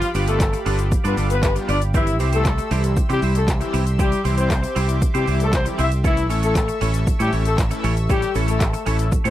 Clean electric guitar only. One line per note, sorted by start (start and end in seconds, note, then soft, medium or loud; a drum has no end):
0.02 muted clean electric guitar stroke medium
0.14 0.25 D4 medium
0.14 0.25 F4 medium
0.14 0.25 B4 medium
0.14 0.25 D5 medium
0.27 0.38 D4 medium
0.27 0.38 F4 medium
0.27 0.38 B4 medium
0.27 0.37 D5 medium
0.40 muted clean electric guitar stroke soft
0.53 muted clean electric guitar stroke medium
0.66 0.79 D4 medium
0.66 0.78 F4 medium
0.66 0.78 B4 medium
0.66 0.77 D5 loud
0.91 muted clean electric guitar stroke soft
1.04 1.16 D4 medium
1.04 1.16 F4 medium
1.04 1.16 B4 medium
1.04 1.17 D5 medium
1.17 1.27 D4 medium
1.17 1.27 F4 medium
1.17 1.27 B4 medium
1.17 1.28 D5 medium
1.43 muted clean electric guitar stroke soft
1.55 muted clean electric guitar stroke soft
1.68 1.81 D4 medium
1.68 1.81 F4 medium
1.68 1.80 B4 loud
1.68 1.80 D5 medium
1.81 muted clean electric guitar stroke medium
1.94 2.07 C4 medium
1.94 2.07 E4 loud
1.94 2.06 G4 loud
1.94 2.06 C5 loud
2.07 muted clean electric guitar stroke medium
2.20 2.30 C4 medium
2.20 2.30 E4 medium
2.20 2.30 G4 medium
2.20 2.30 C5 medium
2.32 2.43 C4 medium
2.32 2.43 E4 medium
2.32 2.43 G4 medium
2.32 2.42 C5 medium
2.45 muted clean electric guitar stroke soft
2.58 muted clean electric guitar stroke medium
2.71 2.84 C4 medium
2.71 2.83 E4 medium
2.71 2.83 G4 medium
2.71 2.83 C5 loud
2.84 muted clean electric guitar stroke soft
2.97 muted clean electric guitar stroke soft
3.09 3.21 C4 medium
3.09 3.21 E4 medium
3.09 3.22 G4 medium
3.09 3.22 C5 medium
3.22 3.32 C4 medium
3.22 3.32 E4 medium
3.22 3.33 G4 medium
3.22 3.33 C5 medium
3.48 muted clean electric guitar stroke soft
3.60 muted clean electric guitar stroke soft
3.73 3.86 C4 medium
3.73 3.86 E4 medium
3.73 3.85 G4 medium
3.73 3.85 C5 medium
3.86 muted clean electric guitar stroke medium
3.99 4.12 C4 medium
3.99 4.11 E4 medium
3.99 4.11 G4 medium
3.99 4.10 C5 medium
4.12 muted clean electric guitar stroke medium
4.24 4.35 C4 medium
4.24 4.35 E4 medium
4.24 4.35 G4 medium
4.24 4.35 C5 medium
4.37 4.48 C4 medium
4.37 4.48 E4 medium
4.37 4.48 G4 medium
4.37 4.47 C5 medium
4.50 muted clean electric guitar stroke medium
4.63 muted clean electric guitar stroke soft
4.75 4.89 C4 medium
4.75 4.88 E4 medium
4.75 4.88 G4 medium
4.75 4.87 C5 medium
4.88 muted clean electric guitar stroke medium
5.01 muted clean electric guitar stroke medium
5.14 5.26 C4 medium
5.14 5.26 E4 medium
5.14 5.26 G4 medium
5.14 5.27 C5 medium
5.27 5.37 C4 medium
5.27 5.37 E4 medium
5.27 5.38 G4 medium
5.27 5.38 C5 medium
5.40 muted clean electric guitar stroke soft
5.53 muted clean electric guitar stroke soft
5.65 muted clean electric guitar stroke medium
5.78 5.91 C4 medium
5.78 5.91 E4 medium
5.78 5.90 G4 medium
5.78 5.90 C5 medium
5.91 muted clean electric guitar stroke medium
6.04 6.17 C#4 loud
6.04 6.16 E4 medium
6.04 6.16 A4 loud
6.04 6.16 C#5 loud
6.17 muted clean electric guitar stroke soft
6.29 6.40 C#4 medium
6.29 6.40 E4 medium
6.29 6.40 A4 medium
6.29 6.40 C#5 medium
6.42 6.53 C#4 medium
6.42 6.53 E4 medium
6.42 6.53 A4 medium
6.42 6.53 C#5 medium
6.68 muted clean electric guitar stroke soft
6.81 6.94 C#4 medium
6.81 6.93 E4 medium
6.81 6.93 A4 loud
6.81 6.93 C#5 medium
6.94 muted clean electric guitar stroke soft
7.07 muted clean electric guitar stroke soft
7.19 7.31 C#4 medium
7.19 7.31 E4 medium
7.19 7.32 A4 medium
7.19 7.32 C#5 medium
7.32 7.42 C#4 medium
7.32 7.43 E4 medium
7.32 7.43 A4 medium
7.32 7.43 C#5 medium
7.45 muted clean electric guitar stroke soft
7.58 muted clean electric guitar stroke soft
7.71 muted clean electric guitar stroke medium
7.83 7.96 C#4 medium
7.83 7.96 E4 medium
7.83 7.96 A4 medium
7.83 7.95 C#5 medium
7.97 muted clean electric guitar stroke soft
8.09 8.22 C#4 medium
8.09 8.22 E4 loud
8.09 8.21 A4 loud
8.09 8.21 C#5 loud
8.22 muted clean electric guitar stroke soft
8.35 8.45 C#4 medium
8.35 8.45 E4 medium
8.35 8.45 A4 medium
8.35 8.46 C#5 medium
8.48 8.58 C#4 medium
8.48 8.58 E4 medium
8.48 8.58 A4 medium
8.48 8.58 C#5 medium
8.61 muted clean electric guitar stroke soft
8.73 muted clean electric guitar stroke medium
8.86 8.99 C#4 medium
8.86 8.98 E4 medium
8.86 8.98 A4 medium
8.86 8.98 C#5 loud
8.99 muted clean electric guitar stroke soft
9.12 muted clean electric guitar stroke medium
9.24 9.30 C#4 medium
9.24 9.30 E4 medium
9.24 9.30 A4 medium
9.24 9.30 C#5 medium